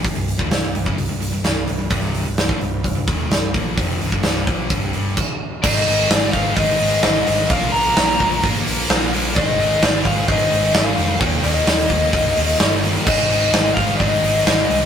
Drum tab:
CC |----------------|----------------|------------x---|x---------------|
HH |o-o-o-o-o-o-o-o-|o-o-o-o-o-o-o-o-|o-o-o-o-o-o-----|--o-o-o-o-o-o-o-|
SD |----o-------o---|----oo------o---|----oo----------|----o-------o---|
BD |o--o---o--------|o----o--o-o---o-|o--o--o-o---o---|o-----o-o-------|

CC |----------------|----------------|----------------|x---------------|
HH |o-o-o-o-o-o-o-o-|o-o-o-o-o-o-o-o-|o-o-o-o-o-o-o-o-|--o-o-o-o-o-o-o-|
SD |----o-------o---|----o-------o---|----o-------o---|----o-------o---|
BD |o-----o-o-------|o-----o-o-------|o-----o-o-------|o-----o-o-------|